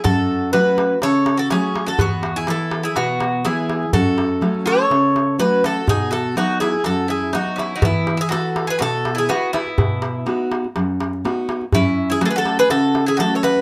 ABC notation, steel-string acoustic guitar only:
X:1
M:4/4
L:1/8
Q:1/4=123
K:E
V:1 name="Steel-string acoustic guitar"
F,,2 [F,A,C]2 C,2 [F,A,C]2 | E,,2 [E,B,]2 B,,2 [E,G,B,]2 | F,,2 [F,A,C]2 C,2 [F,A,C]2 | B,,2 [F,B,D]2 F,,2 [F,B,D]2 |
E,2 [EFB]2 B,,2 [EFG]2 | B,,2 [B,DF]2 F,,2 [B,DF]2 | F,,2 [F,A,C]2 C,2 [F,A,C]2 |]